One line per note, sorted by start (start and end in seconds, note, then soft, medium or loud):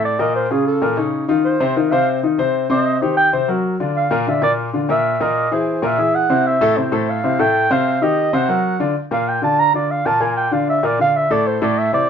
0.00 0.14 A2 medium
0.00 0.14 A3 medium
0.00 0.14 A4 medium
0.05 0.21 D5 medium
0.19 0.45 A#2 medium
0.19 0.45 A#3 medium
0.19 0.45 A#4 medium
0.19 0.35 D#5 medium
0.35 0.52 C5 medium
0.50 0.76 C#3 medium
0.50 0.77 C#4 medium
0.50 0.77 F4 medium
0.50 0.66 G#4 medium
0.67 1.11 A4 medium
0.82 0.95 A#2 medium
0.82 0.95 A#3 medium
0.82 0.95 A#4 medium
0.97 1.23 C#3 medium
0.97 1.23 C#4 medium
0.97 1.23 D#4 medium
1.28 1.54 D#3 medium
1.28 1.54 D#4 medium
1.28 1.55 F4 medium
1.45 1.78 C5 medium
1.60 1.73 C3 loud
1.60 1.73 C4 medium
1.60 1.74 C5 medium
1.76 1.89 D#3 medium
1.76 1.89 D#4 medium
1.76 1.89 F4 medium
1.76 1.93 A#4 medium
1.92 2.18 C3 medium
1.92 2.18 C4 medium
1.92 2.18 C5 medium
1.92 2.07 F5 loud
2.23 2.36 D#3 medium
2.23 2.36 D#4 medium
2.23 2.36 F4 medium
2.38 2.64 C3 medium
2.38 2.64 C4 medium
2.38 2.65 C5 medium
2.70 2.96 C3 medium
2.70 2.96 C4 medium
2.70 2.96 C5 medium
2.70 3.03 D#5 medium
3.02 3.27 D#3 medium
3.02 3.28 D#4 medium
3.02 3.28 G4 medium
3.02 3.16 C5 medium
3.17 3.32 G5 loud
3.33 3.46 C3 medium
3.33 3.46 C4 medium
3.33 3.46 C5 medium
3.48 3.74 F#3 medium
3.48 3.74 F#4 medium
3.48 3.74 A#4 medium
3.80 4.06 D3 medium
3.80 4.06 D4 medium
3.80 4.06 F4 medium
3.97 4.30 F5 medium
4.11 4.24 A#2 medium
4.11 4.24 A#3 medium
4.11 4.24 A#4 medium
4.27 4.40 D3 medium
4.27 4.40 D4 medium
4.27 4.40 F4 medium
4.27 4.42 E5 medium
4.42 4.68 A#2 medium
4.42 4.68 A#3 medium
4.42 4.68 A#4 medium
4.42 4.52 D5 loud
4.73 4.86 D3 medium
4.73 4.87 D4 medium
4.73 4.87 F4 medium
4.89 5.15 A#2 medium
4.89 5.15 A#3 medium
4.89 5.15 A#4 medium
4.89 5.23 E5 medium
5.20 5.46 A#2 medium
5.20 5.46 A#3 medium
5.20 5.47 A#4 medium
5.20 5.54 D#5 medium
5.51 5.77 E3 medium
5.51 5.78 E4 medium
5.51 5.78 G#4 medium
5.51 5.86 C5 medium
5.82 5.96 A#2 medium
5.82 5.96 A#3 medium
5.82 5.96 A#4 medium
5.82 6.17 E5 loud
5.98 6.24 E3 medium
5.98 6.24 E4 medium
5.98 6.24 G#4 medium
6.15 6.48 F#5 loud
6.30 6.55 C3 medium
6.30 6.56 C4 medium
6.30 6.56 E4 medium
6.47 6.79 E5 medium
6.61 6.74 A2 medium
6.61 6.74 A3 medium
6.61 6.74 A4 medium
6.77 6.90 C3 medium
6.77 6.90 C4 medium
6.77 6.90 E4 medium
6.77 7.11 C5 medium
6.92 7.18 A2 medium
6.92 7.18 A3 medium
6.92 7.18 A4 medium
7.09 7.42 F5 loud
7.24 7.37 C3 medium
7.24 7.37 C4 medium
7.24 7.37 E4 medium
7.39 7.65 A2 medium
7.39 7.65 A3 medium
7.39 7.65 A4 medium
7.39 7.73 G5 loud
7.70 7.96 C3 medium
7.70 7.96 C4 medium
7.70 7.96 C5 medium
7.70 8.04 F5 loud
8.02 8.27 D#3 medium
8.02 8.28 D#4 medium
8.02 8.28 G4 medium
8.02 8.36 D#5 medium
8.33 8.46 C3 medium
8.33 8.46 C4 medium
8.33 8.46 C5 medium
8.33 8.81 F#5 loud
8.48 8.74 F#3 medium
8.48 8.74 F#4 medium
8.48 8.75 A#4 medium
8.80 8.93 D3 medium
8.80 8.93 D4 medium
8.80 8.93 F4 medium
9.11 9.37 A#2 medium
9.11 9.37 A#3 medium
9.11 9.37 A#4 medium
9.11 9.30 F5 medium
9.28 9.43 G5 medium
9.42 9.68 D3 medium
9.42 9.68 D4 medium
9.42 9.68 F4 medium
9.42 9.61 A5 medium
9.59 9.75 A#5 loud
9.74 10.00 D3 medium
9.74 10.00 D4 medium
9.74 10.00 F4 medium
9.74 9.92 D5 medium
9.91 10.08 F5 medium
10.05 10.18 A#2 medium
10.05 10.19 A#3 medium
10.05 10.19 A#4 medium
10.05 10.23 A5 loud
10.20 10.46 A#2 medium
10.20 10.46 A#3 medium
10.20 10.47 A#4 medium
10.20 10.36 G#5 medium
10.37 10.55 G5 medium
10.51 10.77 D3 medium
10.51 10.78 D4 medium
10.51 10.78 F4 medium
10.51 10.68 F5 medium
10.69 10.87 E5 medium
10.83 10.96 A#2 medium
10.83 10.96 A#3 medium
10.83 10.96 A#4 medium
10.83 11.00 D5 medium
10.99 11.25 D3 medium
10.99 11.25 D4 medium
10.99 11.25 F4 medium
10.99 11.18 F5 loud
11.16 11.33 E5 medium
11.30 11.56 A2 medium
11.30 11.56 A3 medium
11.30 11.56 A4 medium
11.30 11.48 D5 loud
11.47 11.62 C5 medium
11.62 11.87 A2 loud
11.62 11.87 A3 medium
11.62 11.88 A4 medium
11.62 11.80 D5 medium
11.78 11.93 E5 loud
11.92 12.10 C3 medium
11.92 12.10 C4 medium
11.92 12.10 E4 medium
11.92 12.10 D5 loud